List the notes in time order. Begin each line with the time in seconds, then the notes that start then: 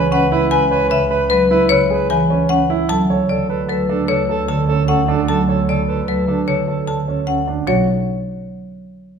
Already playing: C#2 C#4
0.12 C#4 B4 F#5
0.32 E4 B4
0.51 B4 G#5
0.70 B4 C#5
0.90 C#3 B4 E5
1.10 B4
1.30 F#3 B4
1.51 E4 B4
1.69 C#3 B4 C#5
1.90 G#4 B4
2.10 E3 B4 G#5
2.30 C#4 B4
2.49 C#4 B4 F#5
2.70 E4
2.89 D2 F#3 A4 A5
3.10 A4 C#5
3.29 C#3 A4 D5
3.49 A4 B4
3.69 F#3 A4 B4
3.89 D4 A4
4.08 C#3 A4 C#5
4.29 A4
4.48 D3 A4 A5
4.68 C#4 A4
4.88 C#4 A4 F#5
5.08 D4 A4
5.28 F#3 A4 A5
5.48 A4 C#5
5.68 C#3 A4 D5
5.88 A4 B4
6.08 F#3 A4 B4
6.27 D4 A4
6.46 C#3 A4 C#5
6.67 A4
6.87 D3 A4 A5
7.07 C#4 A4
7.27 C#4 A4 F#5
7.48 D4
7.67 B1 F#3 F#4 C#5